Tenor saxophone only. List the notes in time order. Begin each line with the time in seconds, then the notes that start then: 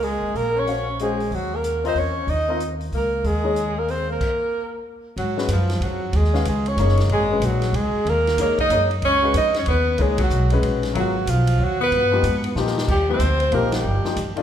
0.03 G#3
0.35 A#3
0.56 C#4
1.00 G#3
1.33 F#3
1.54 A#3
1.85 C4
1.98 C#4
2.30 D#4
2.94 A#3
3.25 G#3
3.79 A#3
3.90 C4
4.10 A#3
5.17 F#3
5.51 F3
5.84 F#3
6.17 G#3
6.49 G#3
6.68 C#4
7.12 G#3
7.45 F#3
7.75 G#3
8.08 A#3
8.41 A#3
8.60 D#4
9.05 C#4
9.37 D#4
9.56 C#4
9.68 B3
9.99 G#3
10.19 F#3
10.94 F#3
11.27 F3
11.60 F#3
11.81 B3
12.90 G3
13.10 C4
13.53 A#3
13.71 G3